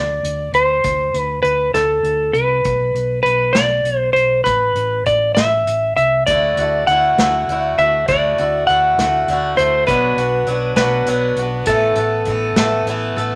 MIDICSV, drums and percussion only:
0, 0, Header, 1, 2, 480
1, 0, Start_track
1, 0, Tempo, 601202
1, 675, Time_signature, 6, 3, 24, 8
1, 10660, End_track
2, 0, Start_track
2, 0, Title_t, "Drums"
2, 196, Note_on_c, 9, 42, 62
2, 276, Note_off_c, 9, 42, 0
2, 429, Note_on_c, 9, 42, 62
2, 509, Note_off_c, 9, 42, 0
2, 670, Note_on_c, 9, 42, 76
2, 674, Note_on_c, 9, 36, 100
2, 750, Note_off_c, 9, 42, 0
2, 754, Note_off_c, 9, 36, 0
2, 914, Note_on_c, 9, 42, 61
2, 993, Note_off_c, 9, 42, 0
2, 1155, Note_on_c, 9, 42, 53
2, 1235, Note_off_c, 9, 42, 0
2, 1394, Note_on_c, 9, 38, 97
2, 1394, Note_on_c, 9, 42, 76
2, 1473, Note_off_c, 9, 42, 0
2, 1474, Note_off_c, 9, 38, 0
2, 1634, Note_on_c, 9, 42, 57
2, 1713, Note_off_c, 9, 42, 0
2, 1872, Note_on_c, 9, 42, 54
2, 1952, Note_off_c, 9, 42, 0
2, 2112, Note_on_c, 9, 42, 75
2, 2117, Note_on_c, 9, 36, 97
2, 2192, Note_off_c, 9, 42, 0
2, 2197, Note_off_c, 9, 36, 0
2, 2360, Note_on_c, 9, 42, 54
2, 2440, Note_off_c, 9, 42, 0
2, 2602, Note_on_c, 9, 42, 51
2, 2682, Note_off_c, 9, 42, 0
2, 2833, Note_on_c, 9, 38, 104
2, 2833, Note_on_c, 9, 42, 73
2, 2912, Note_off_c, 9, 42, 0
2, 2913, Note_off_c, 9, 38, 0
2, 3075, Note_on_c, 9, 42, 60
2, 3155, Note_off_c, 9, 42, 0
2, 3323, Note_on_c, 9, 42, 53
2, 3403, Note_off_c, 9, 42, 0
2, 3557, Note_on_c, 9, 42, 82
2, 3564, Note_on_c, 9, 36, 92
2, 3637, Note_off_c, 9, 42, 0
2, 3644, Note_off_c, 9, 36, 0
2, 3798, Note_on_c, 9, 42, 63
2, 3878, Note_off_c, 9, 42, 0
2, 4040, Note_on_c, 9, 42, 56
2, 4047, Note_on_c, 9, 36, 66
2, 4120, Note_off_c, 9, 42, 0
2, 4127, Note_off_c, 9, 36, 0
2, 4284, Note_on_c, 9, 38, 107
2, 4284, Note_on_c, 9, 42, 78
2, 4363, Note_off_c, 9, 42, 0
2, 4364, Note_off_c, 9, 38, 0
2, 4529, Note_on_c, 9, 42, 62
2, 4609, Note_off_c, 9, 42, 0
2, 4772, Note_on_c, 9, 42, 59
2, 4851, Note_off_c, 9, 42, 0
2, 5006, Note_on_c, 9, 42, 80
2, 5014, Note_on_c, 9, 36, 96
2, 5085, Note_off_c, 9, 42, 0
2, 5093, Note_off_c, 9, 36, 0
2, 5248, Note_on_c, 9, 42, 59
2, 5328, Note_off_c, 9, 42, 0
2, 5491, Note_on_c, 9, 42, 57
2, 5571, Note_off_c, 9, 42, 0
2, 5736, Note_on_c, 9, 42, 80
2, 5737, Note_on_c, 9, 38, 95
2, 5816, Note_off_c, 9, 38, 0
2, 5816, Note_off_c, 9, 42, 0
2, 5981, Note_on_c, 9, 42, 57
2, 6061, Note_off_c, 9, 42, 0
2, 6215, Note_on_c, 9, 42, 57
2, 6295, Note_off_c, 9, 42, 0
2, 6450, Note_on_c, 9, 42, 70
2, 6456, Note_on_c, 9, 36, 103
2, 6530, Note_off_c, 9, 42, 0
2, 6536, Note_off_c, 9, 36, 0
2, 6693, Note_on_c, 9, 42, 58
2, 6773, Note_off_c, 9, 42, 0
2, 6938, Note_on_c, 9, 42, 50
2, 7018, Note_off_c, 9, 42, 0
2, 7176, Note_on_c, 9, 38, 94
2, 7176, Note_on_c, 9, 42, 76
2, 7255, Note_off_c, 9, 42, 0
2, 7256, Note_off_c, 9, 38, 0
2, 7411, Note_on_c, 9, 42, 58
2, 7491, Note_off_c, 9, 42, 0
2, 7652, Note_on_c, 9, 42, 58
2, 7731, Note_off_c, 9, 42, 0
2, 7890, Note_on_c, 9, 36, 106
2, 7892, Note_on_c, 9, 42, 78
2, 7970, Note_off_c, 9, 36, 0
2, 7972, Note_off_c, 9, 42, 0
2, 8127, Note_on_c, 9, 42, 61
2, 8207, Note_off_c, 9, 42, 0
2, 8357, Note_on_c, 9, 42, 61
2, 8437, Note_off_c, 9, 42, 0
2, 8593, Note_on_c, 9, 42, 81
2, 8594, Note_on_c, 9, 38, 110
2, 8673, Note_off_c, 9, 38, 0
2, 8673, Note_off_c, 9, 42, 0
2, 8835, Note_on_c, 9, 42, 64
2, 8915, Note_off_c, 9, 42, 0
2, 9075, Note_on_c, 9, 42, 63
2, 9155, Note_off_c, 9, 42, 0
2, 9308, Note_on_c, 9, 42, 83
2, 9316, Note_on_c, 9, 36, 97
2, 9388, Note_off_c, 9, 42, 0
2, 9396, Note_off_c, 9, 36, 0
2, 9546, Note_on_c, 9, 42, 61
2, 9626, Note_off_c, 9, 42, 0
2, 9784, Note_on_c, 9, 42, 56
2, 9794, Note_on_c, 9, 36, 66
2, 9864, Note_off_c, 9, 42, 0
2, 9874, Note_off_c, 9, 36, 0
2, 10030, Note_on_c, 9, 42, 75
2, 10031, Note_on_c, 9, 38, 105
2, 10110, Note_off_c, 9, 42, 0
2, 10111, Note_off_c, 9, 38, 0
2, 10275, Note_on_c, 9, 42, 62
2, 10355, Note_off_c, 9, 42, 0
2, 10523, Note_on_c, 9, 42, 55
2, 10603, Note_off_c, 9, 42, 0
2, 10660, End_track
0, 0, End_of_file